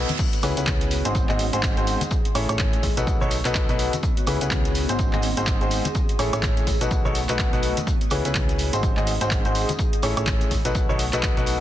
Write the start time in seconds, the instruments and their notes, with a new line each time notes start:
Already playing: ambient pad B3 F#4, reverse cymbal
0.09 closed hi-hat, tambourine, high conga, cabasa
0.19 kick, closed hi-hat, crash, tambourine, cabasa
0.33 closed hi-hat, cabasa
0.43 fm bass C#2, grand piano C#3 B3 C#4 E4 G#4 B4, closed hi-hat, open hi-hat, tambourine, high woodblock
0.57 fm bass C#2, grand piano C#3 B3 C#4 E4 G#4 B4, closed hi-hat, tambourine, cabasa
0.63 ambient pad G#4, kick, clap, closed hi-hat
0.67 snare, tambourine, high conga, cabasa
0.81 snare, closed hi-hat, cabasa
0.91 snare, closed hi-hat, open hi-hat, tambourine
1.05 fm bass G#1, grand piano G#2 C4 D#4 F#4 G#4 C5, closed hi-hat, tambourine, cabasa
1.15 kick, closed hi-hat, tambourine, cabasa
1.29 fm bass G#1, grand piano G#2 C4 D#4 F#4 G#4 D#5, clap, high conga, cabasa
1.39 closed hi-hat, open hi-hat, tambourine
1.53 fm bass G#1, grand piano G#2 C4 D#4 F#4 G#4 C5, closed hi-hat, tambourine, cabasa
1.63 kick, snare, clap, closed hi-hat, tambourine, cabasa
1.77 fm bass G#1, grand piano G#2 C4 D#4 F#4 G#4 C5, closed hi-hat, cabasa
1.87 closed hi-hat, open hi-hat, tambourine
2.01 closed hi-hat, tambourine, high conga, cabasa
2.10 ambient pad A3, kick, closed hi-hat, tambourine, cabasa
2.25 closed hi-hat, cabasa
2.35 fm bass A1, grand piano A2 C#4 E4 G#4 A4 C#5, closed hi-hat, open hi-hat, tambourine, high woodblock
2.49 fm bass A1, grand piano A2 C#4 E4 G#4 A4 C#5, closed hi-hat, tambourine, cabasa, high woodblock
2.59 kick, snare, clap, closed hi-hat, tambourine, high conga, cabasa
2.73 closed hi-hat, cabasa
2.83 ambient pad B3, kick, closed hi-hat, open hi-hat, tambourine
2.97 fm bass B1, grand piano B2 B3 D#4 F#4 A4 B4, closed hi-hat, tambourine, cabasa
3.07 kick, closed hi-hat, tambourine, cabasa
3.16 ambient pad F#4
3.21 fm bass B1, grand piano B2 B3 D#4 F#4 A4 C#5, high conga, cabasa
3.31 closed hi-hat, open hi-hat, tambourine
3.45 fm bass B1, grand piano B2 B3 D#4 F#4 A4 B4, clap, closed hi-hat, tambourine, cabasa
3.55 kick, snare, clap, closed hi-hat, cabasa
3.69 fm bass B1, grand piano B2 B3 D#4 F#4 A4 B4, closed hi-hat, cabasa
3.79 closed hi-hat, open hi-hat, tambourine
3.93 closed hi-hat, tambourine, high conga, cabasa
4.03 kick, closed hi-hat, cabasa
4.17 closed hi-hat, cabasa
4.27 fm bass C#2, grand piano C#3 B3 C#4 E4 G#4 B4, closed hi-hat, open hi-hat, tambourine, high woodblock
4.41 fm bass C#2, grand piano C#3 B3 C#4 E4 G#4 B4, closed hi-hat, tambourine, cabasa
4.47 ambient pad G#4, kick, clap, closed hi-hat, tambourine, high conga
4.52 snare, cabasa
4.65 snare, closed hi-hat, cabasa
4.75 snare, closed hi-hat, open hi-hat, tambourine
4.88 fm bass G#1, grand piano G#2 C4 D#4 F#4 G#4 C5, closed hi-hat, tambourine, cabasa
4.99 kick, closed hi-hat, tambourine, cabasa
5.13 fm bass G#1, grand piano G#2 C4 D#4 F#4 G#4 D#5, clap, high conga, cabasa
5.22 closed hi-hat, open hi-hat, tambourine
5.37 fm bass G#1, grand piano G#2 C4 D#4 F#4 G#4 C5, closed hi-hat, tambourine, cabasa
5.47 kick, snare, clap, closed hi-hat, cabasa
5.61 fm bass G#1, grand piano G#2 C4 D#4 F#4 G#4 C5, closed hi-hat, cabasa
5.71 closed hi-hat, open hi-hat, tambourine
5.85 closed hi-hat, tambourine, high conga, cabasa
5.95 ambient pad A3, kick, closed hi-hat, tambourine, cabasa
6.09 closed hi-hat, cabasa
6.19 fm bass A1, grand piano A2 C#4 E4 G#4 A4 C#5, closed hi-hat, open hi-hat, tambourine, high woodblock
6.33 fm bass A1, grand piano A2 C#4 E4 G#4 A4 C#5, closed hi-hat, tambourine, cabasa, high woodblock
6.43 kick, snare, clap, closed hi-hat, tambourine, high conga, cabasa
6.57 closed hi-hat, cabasa
6.67 ambient pad B3, kick, closed hi-hat, open hi-hat, tambourine
6.81 fm bass B1, grand piano B2 B3 D#4 F#4 A4 B4, closed hi-hat, tambourine, cabasa
6.91 kick, closed hi-hat, tambourine, cabasa
7.05 fm bass B1, grand piano B2 B3 D#4 F#4 A4 C#5, high conga, cabasa
7.13 ambient pad F#4, closed hi-hat, open hi-hat, tambourine
7.28 fm bass B1, grand piano B2 B3 D#4 F#4 A4 B4, clap, closed hi-hat, tambourine, cabasa
7.39 kick, snare, clap, closed hi-hat, tambourine, cabasa
7.53 fm bass B1, grand piano B2 B3 D#4 F#4 A4 B4, closed hi-hat, cabasa
7.63 closed hi-hat, open hi-hat, tambourine
7.77 closed hi-hat, tambourine, high conga, cabasa
7.87 kick, closed hi-hat, tambourine, cabasa
8.01 ambient pad G#4, closed hi-hat, cabasa
8.10 fm bass C#2, grand piano C#3 B3 C#4 E4 G#4 B4, closed hi-hat, open hi-hat, tambourine, high woodblock
8.25 fm bass C#2, grand piano C#3 B3 C#4 E4 G#4 B4, closed hi-hat, tambourine, cabasa
8.34 kick, snare, clap, closed hi-hat, tambourine, high conga, cabasa
8.49 snare, closed hi-hat, cabasa
8.58 snare, closed hi-hat, open hi-hat, tambourine
8.73 fm bass G#1, grand piano G#2 C4 D#4 F#4 G#4 C5, closed hi-hat, tambourine, cabasa
8.83 kick, closed hi-hat, tambourine, cabasa
8.97 fm bass G#1, grand piano G#2 C4 D#4 F#4 G#4 D#5, clap, high conga, cabasa
9.07 closed hi-hat, open hi-hat, tambourine
9.21 fm bass G#1, grand piano G#2 C4 D#4 F#4 G#4 C5, closed hi-hat, tambourine, cabasa
9.31 kick, snare, clap, closed hi-hat, cabasa
9.45 fm bass G#1, grand piano G#2 C4 D#4 F#4 G#4 C5, closed hi-hat, cabasa
9.55 closed hi-hat, open hi-hat, tambourine
9.69 closed hi-hat, tambourine, high conga, cabasa
9.79 ambient pad A3, kick, closed hi-hat, tambourine, cabasa
9.93 closed hi-hat, cabasa
10.02 fm bass A1, grand piano A2 C#4 E4 G#4 A4 C#5, closed hi-hat, open hi-hat, tambourine, high woodblock
10.17 fm bass A1, grand piano A2 C#4 E4 G#4 A4 C#5, closed hi-hat, tambourine, cabasa, high woodblock
10.27 kick, snare, clap, closed hi-hat, tambourine, high conga, cabasa
10.41 closed hi-hat, cabasa
10.51 ambient pad B3, kick, closed hi-hat, open hi-hat, tambourine
10.65 fm bass B1, grand piano B2 B3 D#4 F#4 A4 B4, closed hi-hat, tambourine, cabasa
10.75 kick, closed hi-hat, tambourine, cabasa
10.79 ambient pad C#5
10.89 fm bass B1, grand piano B2 B3 D#4 F#4 A4 C#5, high conga, cabasa
10.96 ambient pad F#4, closed hi-hat, open hi-hat
11.00 tambourine
11.13 fm bass B1, grand piano B2 B3 D#4 F#4 A4 B4, clap, closed hi-hat, tambourine, cabasa
11.23 kick, snare, clap, closed hi-hat, cabasa
11.37 fm bass B1, grand piano B2 B3 D#4 F#4 A4 B4, closed hi-hat, cabasa
11.46 closed hi-hat, open hi-hat, tambourine